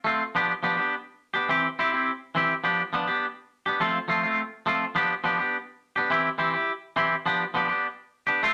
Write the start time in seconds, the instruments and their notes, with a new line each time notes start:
0.04 clean electric guitar A3 C4 F4
0.35 clean electric guitar F3 B3 D4 G4
0.63 clean electric guitar F3 B3 D4 G4
0.77 clean electric guitar B3 D4 G4
1.34 clean electric guitar B3 D4 G4
1.49 clean electric guitar E3 C4 G4, muted clean electric guitar stroke
1.79 clean electric guitar C4 E4 G4
1.93 clean electric guitar C4 E4 G4
2.35 clean electric guitar E3 C4 E4 G4
2.64 clean electric guitar F3 B3 D4 G4
2.93 clean electric guitar F3 B3 D4, muted clean electric guitar stroke
3.08 clean electric guitar B3 D4 G4
3.66 clean electric guitar B3 D4 G4
3.80 clean electric guitar F3 A3 C4 F4
4.08 clean electric guitar F3 A3 C4 F4
4.23 clean electric guitar A3 C4 F4
4.66 clean electric guitar F3 A3 C4 F4
4.95 clean electric guitar F3 B3 D4 G4
5.24 clean electric guitar F3 B3 D4 G4
5.39 clean electric guitar B3 D4 G4
5.96 clean electric guitar B3 D4 G4
6.10 clean electric guitar E3 C4 E4 G4
6.38 clean electric guitar E3 C4 E4 G4
6.54 clean electric guitar E4 G4, muted clean electric guitar stroke
6.96 clean electric guitar E3 C4 E4 G4
7.26 clean electric guitar F3 B3 D4 G4
7.54 clean electric guitar F3 B3 D4 G4
7.68 clean electric guitar B3 D4 G4
8.27 clean electric guitar B3 D4 G4
8.43 clean electric guitar A3 C4 F4